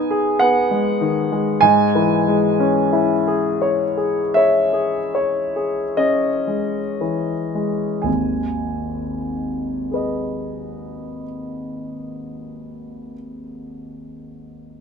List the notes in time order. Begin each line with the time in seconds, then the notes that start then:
Already playing: G#2 B3 D#4 G#5
0.11 G#4
0.39 B3 F#5
0.71 G#3
1.01 D#3
1.32 G#3
1.61 G#2 G#5
1.95 E3
2.28 G#3
2.60 C#4
2.93 E4
3.27 G#4
3.62 C#5
3.97 G#4
4.34 C#5 E5
4.73 G#4
5.15 C#5
5.56 G#4
5.97 C#4 D#5
6.47 G#3
7.01 E3
7.55 G#3
8.02 G#1 D#2 G#5
9.91 G#4 B4 D#5